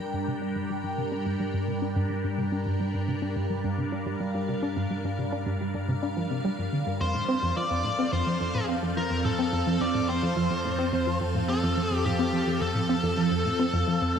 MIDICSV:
0, 0, Header, 1, 5, 480
1, 0, Start_track
1, 0, Key_signature, -2, "minor"
1, 0, Tempo, 560748
1, 239, Time_signature, 4, 2, 24, 8
1, 12147, End_track
2, 0, Start_track
2, 0, Title_t, "Lead electric guitar"
2, 0, Program_c, 0, 29
2, 6000, Note_on_c, 0, 72, 94
2, 6477, Note_off_c, 0, 72, 0
2, 6481, Note_on_c, 0, 74, 101
2, 6953, Note_off_c, 0, 74, 0
2, 6957, Note_on_c, 0, 72, 82
2, 7404, Note_off_c, 0, 72, 0
2, 7682, Note_on_c, 0, 70, 75
2, 7917, Note_off_c, 0, 70, 0
2, 7920, Note_on_c, 0, 69, 85
2, 8398, Note_on_c, 0, 74, 100
2, 8414, Note_off_c, 0, 69, 0
2, 8636, Note_off_c, 0, 74, 0
2, 8639, Note_on_c, 0, 72, 87
2, 9565, Note_off_c, 0, 72, 0
2, 9838, Note_on_c, 0, 69, 109
2, 10223, Note_off_c, 0, 69, 0
2, 10223, Note_on_c, 0, 67, 109
2, 10315, Note_off_c, 0, 67, 0
2, 10319, Note_on_c, 0, 67, 96
2, 10796, Note_off_c, 0, 67, 0
2, 10800, Note_on_c, 0, 69, 91
2, 12147, Note_off_c, 0, 69, 0
2, 12147, End_track
3, 0, Start_track
3, 0, Title_t, "Ambient pad"
3, 0, Program_c, 1, 92
3, 0, Note_on_c, 1, 55, 69
3, 0, Note_on_c, 1, 62, 78
3, 0, Note_on_c, 1, 70, 73
3, 0, Note_on_c, 1, 79, 71
3, 2611, Note_on_c, 1, 77, 68
3, 2756, Note_off_c, 1, 79, 0
3, 5994, Note_on_c, 1, 53, 80
3, 5998, Note_off_c, 1, 55, 0
3, 6000, Note_off_c, 1, 70, 0
3, 6186, Note_on_c, 1, 60, 80
3, 6287, Note_on_c, 1, 69, 82
3, 7663, Note_off_c, 1, 62, 0
3, 12147, Note_off_c, 1, 53, 0
3, 12147, Note_off_c, 1, 60, 0
3, 12147, Note_off_c, 1, 69, 0
3, 12147, Note_off_c, 1, 77, 0
3, 12147, End_track
4, 0, Start_track
4, 0, Title_t, "Synth arpeggio sound"
4, 0, Program_c, 2, 84
4, 118, Note_on_c, 2, 43, 73
4, 232, Note_off_c, 2, 43, 0
4, 238, Note_on_c, 2, 48, 77
4, 289, Note_off_c, 2, 48, 0
4, 357, Note_on_c, 2, 62, 89
4, 409, Note_off_c, 2, 62, 0
4, 476, Note_on_c, 2, 43, 101
4, 562, Note_off_c, 2, 43, 0
4, 598, Note_on_c, 2, 55, 71
4, 682, Note_off_c, 2, 55, 0
4, 719, Note_on_c, 2, 43, 81
4, 833, Note_off_c, 2, 43, 0
4, 838, Note_on_c, 2, 48, 73
4, 889, Note_off_c, 2, 48, 0
4, 957, Note_on_c, 2, 62, 95
4, 1008, Note_off_c, 2, 62, 0
4, 1077, Note_on_c, 2, 43, 96
4, 1162, Note_off_c, 2, 43, 0
4, 1197, Note_on_c, 2, 55, 78
4, 1282, Note_off_c, 2, 55, 0
4, 1318, Note_on_c, 2, 43, 74
4, 1433, Note_off_c, 2, 43, 0
4, 1438, Note_on_c, 2, 48, 67
4, 1489, Note_off_c, 2, 48, 0
4, 1558, Note_on_c, 2, 62, 96
4, 1609, Note_off_c, 2, 62, 0
4, 1679, Note_on_c, 2, 43, 102
4, 1763, Note_off_c, 2, 43, 0
4, 1799, Note_on_c, 2, 55, 73
4, 1883, Note_off_c, 2, 55, 0
4, 1918, Note_on_c, 2, 43, 70
4, 2033, Note_off_c, 2, 43, 0
4, 2039, Note_on_c, 2, 48, 74
4, 2089, Note_off_c, 2, 48, 0
4, 2158, Note_on_c, 2, 62, 96
4, 2209, Note_off_c, 2, 62, 0
4, 2279, Note_on_c, 2, 43, 95
4, 2363, Note_off_c, 2, 43, 0
4, 2399, Note_on_c, 2, 55, 75
4, 2483, Note_off_c, 2, 55, 0
4, 2519, Note_on_c, 2, 43, 71
4, 2633, Note_off_c, 2, 43, 0
4, 2638, Note_on_c, 2, 48, 78
4, 2689, Note_off_c, 2, 48, 0
4, 2758, Note_on_c, 2, 62, 96
4, 2809, Note_off_c, 2, 62, 0
4, 2878, Note_on_c, 2, 43, 92
4, 2963, Note_off_c, 2, 43, 0
4, 2998, Note_on_c, 2, 55, 71
4, 3083, Note_off_c, 2, 55, 0
4, 3119, Note_on_c, 2, 43, 80
4, 3233, Note_off_c, 2, 43, 0
4, 3238, Note_on_c, 2, 48, 75
4, 3289, Note_off_c, 2, 48, 0
4, 3359, Note_on_c, 2, 62, 95
4, 3409, Note_off_c, 2, 62, 0
4, 3479, Note_on_c, 2, 43, 98
4, 3563, Note_off_c, 2, 43, 0
4, 3599, Note_on_c, 2, 55, 79
4, 3683, Note_off_c, 2, 55, 0
4, 3719, Note_on_c, 2, 43, 75
4, 3833, Note_off_c, 2, 43, 0
4, 3838, Note_on_c, 2, 48, 70
4, 3889, Note_off_c, 2, 48, 0
4, 3959, Note_on_c, 2, 62, 100
4, 4010, Note_off_c, 2, 62, 0
4, 4080, Note_on_c, 2, 43, 97
4, 4164, Note_off_c, 2, 43, 0
4, 4199, Note_on_c, 2, 55, 69
4, 4283, Note_off_c, 2, 55, 0
4, 4319, Note_on_c, 2, 43, 77
4, 4433, Note_off_c, 2, 43, 0
4, 4439, Note_on_c, 2, 48, 73
4, 4490, Note_off_c, 2, 48, 0
4, 4558, Note_on_c, 2, 62, 96
4, 4609, Note_off_c, 2, 62, 0
4, 4678, Note_on_c, 2, 43, 97
4, 4763, Note_off_c, 2, 43, 0
4, 4800, Note_on_c, 2, 55, 70
4, 4884, Note_off_c, 2, 55, 0
4, 4919, Note_on_c, 2, 43, 73
4, 5033, Note_off_c, 2, 43, 0
4, 5038, Note_on_c, 2, 48, 82
4, 5089, Note_off_c, 2, 48, 0
4, 5159, Note_on_c, 2, 62, 101
4, 5210, Note_off_c, 2, 62, 0
4, 5280, Note_on_c, 2, 53, 70
4, 5364, Note_off_c, 2, 53, 0
4, 5399, Note_on_c, 2, 48, 72
4, 5483, Note_off_c, 2, 48, 0
4, 5519, Note_on_c, 2, 55, 98
4, 5569, Note_off_c, 2, 55, 0
4, 5641, Note_on_c, 2, 43, 75
4, 5724, Note_off_c, 2, 43, 0
4, 5759, Note_on_c, 2, 50, 68
4, 5843, Note_off_c, 2, 50, 0
4, 5879, Note_on_c, 2, 43, 74
4, 5993, Note_off_c, 2, 43, 0
4, 5998, Note_on_c, 2, 41, 79
4, 6112, Note_off_c, 2, 41, 0
4, 6117, Note_on_c, 2, 45, 67
4, 6169, Note_off_c, 2, 45, 0
4, 6237, Note_on_c, 2, 60, 95
4, 6288, Note_off_c, 2, 60, 0
4, 6359, Note_on_c, 2, 41, 94
4, 6443, Note_off_c, 2, 41, 0
4, 6479, Note_on_c, 2, 53, 76
4, 6563, Note_off_c, 2, 53, 0
4, 6599, Note_on_c, 2, 41, 72
4, 6713, Note_off_c, 2, 41, 0
4, 6718, Note_on_c, 2, 45, 71
4, 6769, Note_off_c, 2, 45, 0
4, 6837, Note_on_c, 2, 60, 98
4, 6888, Note_off_c, 2, 60, 0
4, 6957, Note_on_c, 2, 41, 97
4, 7042, Note_off_c, 2, 41, 0
4, 7078, Note_on_c, 2, 53, 76
4, 7163, Note_off_c, 2, 53, 0
4, 7198, Note_on_c, 2, 41, 72
4, 7312, Note_off_c, 2, 41, 0
4, 7317, Note_on_c, 2, 45, 72
4, 7368, Note_off_c, 2, 45, 0
4, 7437, Note_on_c, 2, 60, 97
4, 7488, Note_off_c, 2, 60, 0
4, 7556, Note_on_c, 2, 41, 96
4, 7642, Note_off_c, 2, 41, 0
4, 7676, Note_on_c, 2, 53, 68
4, 7762, Note_off_c, 2, 53, 0
4, 7796, Note_on_c, 2, 41, 77
4, 7911, Note_off_c, 2, 41, 0
4, 7917, Note_on_c, 2, 45, 78
4, 7968, Note_off_c, 2, 45, 0
4, 8036, Note_on_c, 2, 60, 92
4, 8088, Note_off_c, 2, 60, 0
4, 8157, Note_on_c, 2, 41, 98
4, 8242, Note_off_c, 2, 41, 0
4, 8276, Note_on_c, 2, 53, 73
4, 8362, Note_off_c, 2, 53, 0
4, 8395, Note_on_c, 2, 41, 81
4, 8511, Note_off_c, 2, 41, 0
4, 8516, Note_on_c, 2, 45, 72
4, 8568, Note_off_c, 2, 45, 0
4, 8635, Note_on_c, 2, 60, 97
4, 8687, Note_off_c, 2, 60, 0
4, 8756, Note_on_c, 2, 41, 97
4, 8841, Note_off_c, 2, 41, 0
4, 8875, Note_on_c, 2, 53, 82
4, 8961, Note_off_c, 2, 53, 0
4, 8995, Note_on_c, 2, 41, 75
4, 9111, Note_off_c, 2, 41, 0
4, 9114, Note_on_c, 2, 45, 75
4, 9167, Note_off_c, 2, 45, 0
4, 9234, Note_on_c, 2, 60, 100
4, 9287, Note_off_c, 2, 60, 0
4, 9355, Note_on_c, 2, 41, 98
4, 9441, Note_off_c, 2, 41, 0
4, 9475, Note_on_c, 2, 53, 72
4, 9561, Note_off_c, 2, 53, 0
4, 9594, Note_on_c, 2, 41, 72
4, 9711, Note_off_c, 2, 41, 0
4, 9717, Note_on_c, 2, 45, 74
4, 9768, Note_off_c, 2, 45, 0
4, 9837, Note_on_c, 2, 60, 100
4, 9889, Note_off_c, 2, 60, 0
4, 9956, Note_on_c, 2, 41, 95
4, 10042, Note_off_c, 2, 41, 0
4, 10077, Note_on_c, 2, 53, 73
4, 10162, Note_off_c, 2, 53, 0
4, 10196, Note_on_c, 2, 41, 72
4, 10312, Note_off_c, 2, 41, 0
4, 10315, Note_on_c, 2, 45, 81
4, 10368, Note_off_c, 2, 45, 0
4, 10436, Note_on_c, 2, 60, 97
4, 10488, Note_off_c, 2, 60, 0
4, 10555, Note_on_c, 2, 41, 93
4, 10641, Note_off_c, 2, 41, 0
4, 10676, Note_on_c, 2, 53, 76
4, 10762, Note_off_c, 2, 53, 0
4, 10796, Note_on_c, 2, 41, 80
4, 10912, Note_off_c, 2, 41, 0
4, 10916, Note_on_c, 2, 45, 76
4, 10968, Note_off_c, 2, 45, 0
4, 11037, Note_on_c, 2, 60, 93
4, 11089, Note_off_c, 2, 60, 0
4, 11158, Note_on_c, 2, 41, 101
4, 11243, Note_off_c, 2, 41, 0
4, 11278, Note_on_c, 2, 53, 82
4, 11363, Note_off_c, 2, 53, 0
4, 11398, Note_on_c, 2, 41, 74
4, 11513, Note_off_c, 2, 41, 0
4, 11518, Note_on_c, 2, 45, 71
4, 11569, Note_off_c, 2, 45, 0
4, 11638, Note_on_c, 2, 60, 97
4, 11689, Note_off_c, 2, 60, 0
4, 11759, Note_on_c, 2, 41, 99
4, 11843, Note_off_c, 2, 41, 0
4, 11878, Note_on_c, 2, 53, 72
4, 11963, Note_off_c, 2, 53, 0
4, 11999, Note_on_c, 2, 41, 76
4, 12113, Note_off_c, 2, 41, 0
4, 12118, Note_on_c, 2, 45, 74
4, 12147, Note_off_c, 2, 45, 0
4, 12147, End_track
5, 0, Start_track
5, 0, Title_t, "Synth drone"
5, 0, Program_c, 3, 95
5, 0, Note_on_c, 3, 43, 85
5, 5975, Note_off_c, 3, 43, 0
5, 5999, Note_on_c, 3, 41, 85
5, 12147, Note_off_c, 3, 41, 0
5, 12147, End_track
0, 0, End_of_file